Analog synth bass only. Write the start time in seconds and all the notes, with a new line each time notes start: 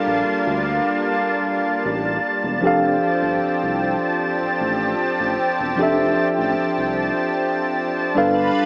0.07 A#1
0.27 D2
0.46 D2
1.84 A1
2.44 E1
2.63 F1
3.22 G1
3.42 C2
3.63 C2
4.41 A1
4.60 A1
5.01 A1
5.20 A1
5.60 E1
5.79 F1
6.38 A1
6.59 C2
6.78 C2
8.16 G1